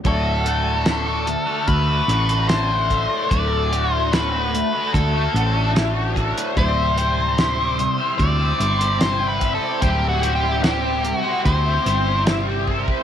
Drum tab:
HH |x-x-x-x-x-xxx-x-|x-x-x-x-x-x-x-xx|x-x-x-x-x-xxx-x-|x-x-x-x-x-x-x---|
SD |----o-------o---|----o-------o---|----o-------o---|----o-------o---|
BD |o-------o-----o-|o-------o-----o-|o-------o-----o-|o-------o-----oo|